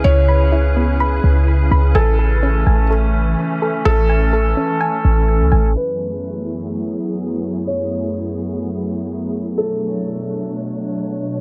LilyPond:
<<
  \new Staff \with { instrumentName = "Synth pluck" } { \time 4/4 \key fis \minor \tempo 4 = 126 <e' b''>8 b''8 e'8 b8 b''4. b''8 | gis''8 a'8 cis'8 gis''8 a'4. a'8~ | a'8 gis''8 a'8 cis'8 gis''4. gis''8 | r1 |
r1 | r1 | }
  \new Staff \with { instrumentName = "Felt piano" } { \time 4/4 \key fis \minor cis''2 r2 | a'2 r2 | a'1 | b'2 r2 |
cis''2 r2 | a'2 r2 | }
  \new Staff \with { instrumentName = "Ambient pad" } { \time 4/4 \key fis \minor << { <cis e' gis' b'>1 | <e a cis'>1~ | <e a cis'>1 | <fis, fis b e' gis'>1~ |
<fis, fis b e' gis'>1 | <b, d' cis''>1 | } \\ { cis'1 | r1 | r1 | a1~ |
a1~ | a1 | } >> }
  \new Staff \with { instrumentName = "808-style bass" } { \clef bass \time 4/4 \key fis \minor cis,2~ cis,8 cis,4 cis,8 | a,,4. a,,4. r4 | a,,4. r4 a,,8. cis,16 a,,8 | r1 |
r1 | r1 | }
>>